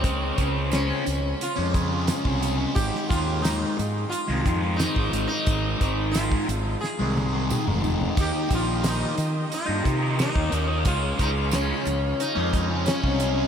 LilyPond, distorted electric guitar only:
\new Staff \with { instrumentName = "Distorted electric guitar" } { \clef bass \time 4/4 \key aes \major \tempo 4 = 89 <des aes des'>8 <des aes des'>8 <des aes des'>16 <aes des'>8. r16 <aes des'>16 <des aes des'>16 <aes des'>16 <des aes des'>16 <aes des'>16 <des aes des'>16 <aes des'>16 | <aes, ees aes>8 <aes, ees aes>8 <aes, ees aes>16 <ees aes>8. r16 <ees aes>16 <aes, ees aes>16 <ees aes>16 <aes, ees aes>16 <ees aes>16 <aes, ees aes>16 <ees aes>16 | <aes, ees aes>8 <aes, ees aes>8 <aes, ees aes>16 <ees aes>8. r16 <ees aes>16 <aes, ees aes>16 <ees aes>16 <aes, ees aes>16 <ees aes>16 <aes, ees aes>16 <ees aes>16 | <ees bes ees'>8 <ees bes ees'>8 <ees bes ees'>16 <bes ees'>8. r16 <bes ees'>16 <ees bes ees'>16 <bes ees'>16 <ees bes ees'>16 <bes ees'>16 <ees bes ees'>16 <bes ees'>16 |
<des aes des'>8 <des aes des'>8 <des aes des'>16 <aes des'>8. r16 <aes des'>16 <des aes des'>16 <aes des'>16 <des aes des'>16 <aes des'>16 <des aes des'>16 <aes des'>16 | }